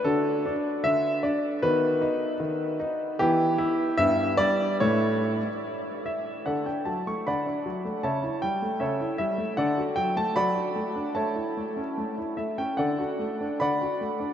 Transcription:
<<
  \new Staff \with { instrumentName = "Grand piano" } { \time 2/4 \key d \major \tempo 4 = 76 << { a'4 e''8 d''8 | b'4. r8 | g'4 e''8 d''8 | cis''4 r8 e''8 |
<a' d'' fis''>16 g''16 a''16 cis'''16 <d'' fis'' b''>4 | <cis'' e'' a''>8 g''8 <a' cis'' e''>8 e''8 | <a' d'' fis''>8 g''16 a''16 <d'' fis'' b''>4 | <cis'' e'' a''>4. e''16 g''16 |
<a' d'' fis''>4 <d'' fis'' b''>4 | } \\ { <d' fis'>2 | <b fis'>2 | <b e'>4 <b e'>4 | r2 |
r2 | r2 | r2 | r2 |
r2 | } >> }
  \new Staff \with { instrumentName = "Grand piano" } { \time 2/4 \key d \major d8 d'8 d8 d'8 | dis8 dis'8 dis8 dis'8 | e8 e'8 g,8 g8 | <a, a e'>4 r4 |
d16 d'16 fis16 a16 d16 d'16 fis16 a16 | cis16 e'16 g16 a16 cis16 e'16 g16 a16 | d16 fis'16 fis16 a16 fis16 fis'16 a16 d'16 | a16 e'16 a16 cis'16 a16 e'16 a16 cis'16 |
d16 fis'16 a16 d'16 d16 fis'16 a16 d'16 | }
>>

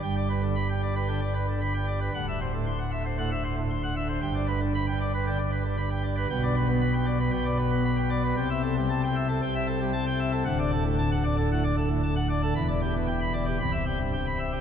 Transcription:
<<
  \new Staff \with { instrumentName = "Pipe organ" } { \time 4/4 \key g \major \tempo 4 = 115 g''16 d''16 b'16 d16 b''16 g''16 d''16 b'16 g''16 d''16 b'16 d16 b''16 g''16 d''16 b'16 | fis''16 e''16 c''16 a,16 c'''16 fis''16 e''16 c''16 fis''16 e''16 c''16 a,16 c'''16 fis''16 e''16 c''16 | g''16 d''16 b'16 d16 b''16 g''16 d''16 b'16 g''16 d''16 b'16 d16 b''16 g''16 d''16 b'16 | g''16 d''16 b'16 b16 b''16 g''16 d''16 b'16 g''16 d''16 b'16 b16 b''16 g''16 d''16 b'16 |
g''16 e''16 a'16 g16 a''16 g''16 e''16 a'16 g''16 e''16 a'16 g16 a''16 g''16 e''16 a'16 | fis''16 d''16 a'16 a,16 a''16 fis''16 d''16 a'16 fis''16 d''16 a'16 a,16 a''16 fis''16 d''16 a'16 | b''16 d''16 g'16 b,16 g''16 b''16 d''16 g'16 b''16 e''16 g'16 g,16 g''16 b''16 e''16 g'16 | }
  \new Staff \with { instrumentName = "Pipe organ" } { \clef bass \time 4/4 \key g \major << { g,2 d16 r4. r16 | d,2 a,16 r4. r16 | g,2 d16 r4. r16 | b,2 b,2 |
c2 c2 | d,2 a,16 r4. r16 | e,2 c,2 | } \\ { g,,1 | d,,1 | g,,1 | b,,2 b,,2 |
c,2 c,2 | d,,1 | e,,2 c,,2 | } >> }
>>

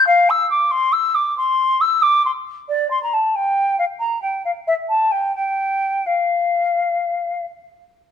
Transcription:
\new Staff \with { instrumentName = "Flute" } { \time 12/8 \key f \major \tempo 4. = 90 f''8 e'''8 d'''8 c'''8 e'''8 d'''8 c'''4 e'''8 d'''8 c'''8 r8 | d''8 c'''16 bes''16 a''8 g''4 f''8 bes''8 g''8 f''8 e''8 a''8 g''8 | g''4. f''2. r4. | }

